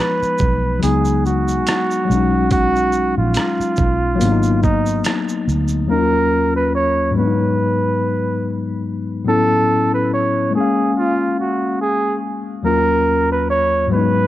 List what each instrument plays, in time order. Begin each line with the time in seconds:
Already playing: tine electric piano F3 G#3 B3 D#4, muted trumpet B4
0.22 muted fingered electric bass stroke, shaker
0.38 fingered electric bass B1, kick, shaker
0.80 fingered electric bass C#2, tine electric piano F#3 G#3 B3, muted trumpet G#4, closed hi-hat, shaker
0.85 tine electric piano D#4
1.05 shaker
1.25 muted trumpet F#4, shaker
1.48 shaker
1.67 finger snap, cross-stick, closed hi-hat, shaker
1.91 shaker
2.05 tine electric piano F#3 G#3
2.10 fingered electric bass B1, tine electric piano C#4, shaker
2.15 tine electric piano D#4
2.51 muted trumpet F#4, kick, closed hi-hat, shaker
2.76 shaker
2.92 shaker
3.18 fingered electric bass A#1, muted trumpet F4
3.34 finger snap, cross-stick, closed hi-hat, shaker
3.60 muted fingered electric bass stroke, shaker
3.76 fingered electric bass B1, kick, shaker
4.16 tine electric piano F#3 A#3
4.21 fingered electric bass G#1, tine electric piano B3, closed hi-hat, shaker
4.25 tine electric piano D4
4.32 tine electric piano D#4
4.43 shaker
4.63 muted trumpet D#4, kick, shaker
4.86 shaker
5.04 finger snap, cross-stick, closed hi-hat, shaker
5.29 shaker
5.47 fingered electric bass D2, shaker
5.68 shaker
5.87 tine electric piano D#2 F#3 A#3 C#4, muted trumpet A#4
5.92 tine electric piano D#4
5.98 tine electric piano F4
6.56 muted trumpet B4
6.75 muted trumpet C#5
7.11 tine electric piano G#2 F#3
7.16 tine electric piano G#3 B3, muted trumpet B4
7.20 tine electric piano D4
7.27 tine electric piano D#4
9.24 tine electric piano A2 F#3 B3 C#4, muted trumpet A4
9.29 tine electric piano E4
9.94 muted trumpet B4
10.13 muted trumpet C#5
10.51 tine electric piano G#3 A#3
10.55 tine electric piano C#4, muted trumpet G#4
10.60 tine electric piano F5
10.98 muted trumpet F4
11.40 muted trumpet F#4
11.81 muted trumpet G#4
12.63 tine electric piano D#2 F#3 A#3 C#4, muted trumpet A#4
12.68 tine electric piano F4
13.32 muted trumpet B4
13.50 muted trumpet C#5
13.87 tine electric piano G#2 F#3
13.92 tine electric piano G#3 B3, muted trumpet B4
13.97 tine electric piano D#4